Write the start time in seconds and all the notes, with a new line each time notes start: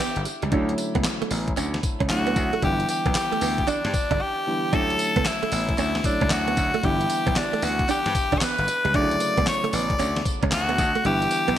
Already playing: D3 E3 G3 B3 E4 G4
0.00 B3, closed hi-hat
0.16 G1, closed hi-hat
0.25 muted clean electric guitar stroke, closed hi-hat, tambourine
0.42 C#2 G3, closed hi-hat
0.51 D2 D3 F#3 A3 C#4 D4 E4, kick, closed hi-hat
0.69 closed hi-hat
0.78 muted clean electric guitar stroke, closed hi-hat, tambourine
0.95 C#2 B3, kick, closed hi-hat
1.04 muted clean electric guitar stroke, snare, clap, closed hi-hat, tambourine
1.21 A3, muted slap bass stroke, closed hi-hat
1.31 A1 B3, open hi-hat, tambourine
1.48 kick, closed hi-hat
1.57 D2 C#4, clap, closed hi-hat, tambourine
1.74 muted clean electric guitar stroke, snare, closed hi-hat
1.83 kick, closed hi-hat, tambourine
2.00 C#2 C#4, kick, closed hi-hat
2.09 D2 D3 F#3 A3 C#4 E4 F#4, snare, clap, closed hi-hat, tambourine
2.27 B3, closed hi-hat
2.36 D2, muted clean electric guitar stroke, kick, closed hi-hat, tambourine
2.53 A3, closed hi-hat
2.62 G1 D3 E3 G3 B3 E4 G4, kick, closed hi-hat
2.80 closed hi-hat
2.89 G4, muted clean electric guitar stroke, closed hi-hat, tambourine
3.06 B1 B3, kick, closed hi-hat
3.15 G4, muted clean electric guitar stroke, snare, clap, closed hi-hat, tambourine
3.32 A3, muted slap bass stroke, closed hi-hat
3.41 D2 B3, open hi-hat, tambourine
3.58 kick, closed hi-hat
3.67 D4, muted slap bass stroke, clap, closed hi-hat, tambourine
3.85 G2, muted clean electric guitar stroke, snare, closed hi-hat
3.94 kick, closed hi-hat, tambourine
4.11 G1 D4, kick, closed hi-hat
4.22 G4
4.47 D3 E3 G3 B3 E4
4.72 D2 D3 F#3 A3 C#4 D4 E4 A4, kick, closed hi-hat
4.90 closed hi-hat
4.99 muted clean electric guitar stroke, closed hi-hat, tambourine
5.16 C#2 B3, kick, closed hi-hat
5.25 E4, snare, clap, closed hi-hat, tambourine
5.43 A3, muted slap bass stroke, closed hi-hat
5.52 A1 B3, open hi-hat, tambourine
5.69 kick, closed hi-hat
5.78 D2 C#4 E4, clap, closed hi-hat, tambourine
5.95 muted clean electric guitar stroke, snare, closed hi-hat
6.04 D3 F#3 A3 C#4 D4 E4, kick, closed hi-hat, tambourine
6.21 C#2 C#4, kick, closed hi-hat
6.30 D2 F#4, snare, clap, closed hi-hat, tambourine
6.48 B3, closed hi-hat
6.57 D2, muted clean electric guitar stroke, kick, closed hi-hat, tambourine
6.74 A3, closed hi-hat
6.83 G1 D3 E3 G3 B3 E4 G4, kick, closed hi-hat
7.01 closed hi-hat
7.10 muted clean electric guitar stroke, closed hi-hat, tambourine
7.27 B1 B3, kick, closed hi-hat
7.36 D4, muted clean electric guitar stroke, snare, clap, closed hi-hat, tambourine
7.53 A3, muted slap bass stroke, closed hi-hat
7.62 D2 B3 F#4, open hi-hat, tambourine
7.79 kick, closed hi-hat
7.89 D4 G4, muted slap bass stroke, clap, closed hi-hat, tambourine
8.06 G2, muted clean electric guitar stroke, snare, closed hi-hat
8.15 kick, closed hi-hat, tambourine
8.32 G1 D4, kick, closed hi-hat
8.38 B3 C#5, muted slap bass stroke, snare, clap, closed hi-hat, tambourine
8.43 B4
8.58 G1, closed hi-hat
8.68 muted clean electric guitar stroke, closed hi-hat, tambourine
8.85 C#2 G3, closed hi-hat
8.94 D2 C#3 D3 F#3 A3 D4 D5, kick, closed hi-hat
9.02 E4
9.11 closed hi-hat
9.20 muted clean electric guitar stroke, closed hi-hat, tambourine
9.37 C#2 B3, kick, closed hi-hat
9.46 C#5, muted clean electric guitar stroke, snare, clap, closed hi-hat, tambourine
9.64 A3, muted slap bass stroke, closed hi-hat
9.69 A1 B3 C#5, open hi-hat, tambourine
9.75 D5
9.90 kick, closed hi-hat
9.99 D2 C#4, clap, closed hi-hat, tambourine
10.16 muted clean electric guitar stroke, snare, closed hi-hat
10.25 kick, closed hi-hat, tambourine
10.43 C#2 C#4, kick, closed hi-hat
10.52 D2 F#4, snare, clap, closed hi-hat, tambourine
10.69 B3, closed hi-hat
10.78 D2, muted clean electric guitar stroke, kick, closed hi-hat, tambourine
10.95 A3, closed hi-hat
11.04 G1 D3 E3 G3 B3 E4 G4, closed hi-hat
11.22 closed hi-hat
11.31 muted clean electric guitar stroke, closed hi-hat, tambourine
11.48 B1 B3, closed hi-hat